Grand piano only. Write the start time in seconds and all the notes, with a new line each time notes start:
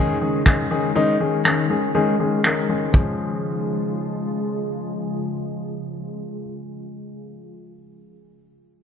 Already playing: D#3 G#3 C#4 G#4
0.21 D#3 G#3 C#4 G#4
0.46 D#3 G#3 C#4 G#4
0.71 D#3 G#3 C#4 G#4
0.95 D#3 G#3 C#4 D#4
1.20 D#3 G#3 C#4 G#4
1.45 D#3 G#3 C#4 G#4
1.70 D#3 G#3 C#4 G#4
1.95 D#3 G#3 C#4 G#4
2.19 D#3 G#3 C#4 G#4
2.44 D#3 G#3 C#4 A#4
2.69 D#3 G#3 C#4 G#4
2.92 F3 G#3 C#4
2.96 G#4